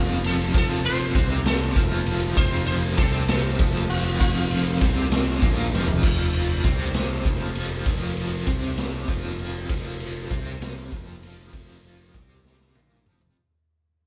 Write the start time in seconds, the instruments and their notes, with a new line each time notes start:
Already playing: picked electric bass F1, overdriven electric guitar F2 F3, transistor combo organ F3 A3 C4 A4 C5, sitar F4
0.09 shaker
0.24 sitar A4, ride
0.54 picked electric bass F1, overdriven electric guitar F2 F3, sitar A4, kick, ride, shaker
0.85 sitar C5, ride
1.00 shaker
1.15 picked electric bass C2, overdriven electric guitar C3 C4, kick, ride
1.33 sitar A#4
1.46 sitar A4, snare, ride, shaker
1.61 shaker
1.76 picked electric bass F1, overdriven electric guitar F2 F3, kick, ride
1.92 shaker
2.06 ride
2.36 picked electric bass F1, overdriven electric guitar F2 F3, sitar C5, kick, ride, shaker
2.66 sitar C5, ride
2.83 shaker
2.97 picked electric bass C2, overdriven electric guitar C3 C4, sitar A4, kick, ride
3.28 sitar A4, snare, ride, shaker
3.45 shaker
3.59 picked electric bass F1, overdriven electric guitar F2 F3, kick, ride
3.75 shaker
3.90 sitar F4, ride
4.20 picked electric bass F1, overdriven electric guitar F2 F3, sitar F4, kick, ride, shaker
4.51 ride
4.67 shaker
4.81 picked electric bass C2, overdriven electric guitar C3 C4, kick, ride
5.12 snare, ride, shaker
5.27 shaker
5.41 picked electric bass A#1, overdriven electric guitar A#2 A#3, kick, ride
5.58 shaker
5.72 picked electric bass F1, overdriven electric guitar F2 F3, snare
5.88 floor tom
6.03 picked electric bass F1, overdriven electric guitar F2 F3, transistor combo organ F3 A3 C4 A4 C5, kick, crash, shaker
6.34 ride
6.49 shaker
6.64 picked electric bass C2, overdriven electric guitar C3 C4, kick, ride, shaker
6.94 snare, ride, shaker
7.25 picked electric bass F1, overdriven electric guitar F2 F3, kick, ride, shaker
7.55 ride
7.86 picked electric bass F1, overdriven electric guitar F2 F3, kick, ride, shaker
8.17 ride
8.32 shaker
8.46 picked electric bass C2, overdriven electric guitar C3 C4, kick, ride, shaker
8.78 snare, ride, shaker
9.08 picked electric bass F1, overdriven electric guitar F2 F3, kick, ride, shaker
9.39 ride
9.69 picked electric bass F1, overdriven electric guitar F2 F3, kick, ride, shaker
10.00 ride
10.17 shaker
10.30 picked electric bass C2, overdriven electric guitar C3 C4, kick, ride, shaker
10.62 snare, ride, shaker
10.92 picked electric bass F1, overdriven electric guitar F2 F3, kick, ride, shaker
11.23 ride
11.53 picked electric bass F1, overdriven electric guitar F2 F3, kick, ride, shaker
11.84 ride, shaker
12.00 shaker
12.14 picked electric bass C2, overdriven electric guitar C3 C4, kick, ride, shaker
12.46 snare
12.61 snare
12.75 picked electric bass A#1, overdriven electric guitar A#2 A#3, high tom, shaker
12.91 mid tom
13.06 picked electric bass F1, overdriven electric guitar F2 F3, mid tom
13.21 floor tom, shaker